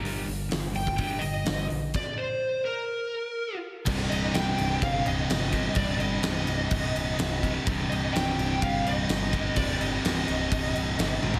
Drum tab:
CC |----------------|x---------------|x-x-x-x-x-x-x-x-|x-x-x-x-x-x-x-x-|
HH |o-o-o-o-o-o-o-o-|----------------|----------------|----------------|
SD |----o-------o---|----------------|----o-------o---|----o-------o---|
T1 |----------------|----------------|----------------|----------------|
FT |----------------|----------------|----------------|----------------|
BD |-------oo-------|o---------------|o-------o-----o-|o-------o-----o-|

CC |x-x-x-x-x-x-x-x-|x-x-x-x-x-x-x---|
HH |----------------|----------------|
SD |----o-------o---|----o-------o---|
T1 |----------------|--------------o-|
FT |----------------|---------------o|
BD |o-------o-----o-|o-------o-------|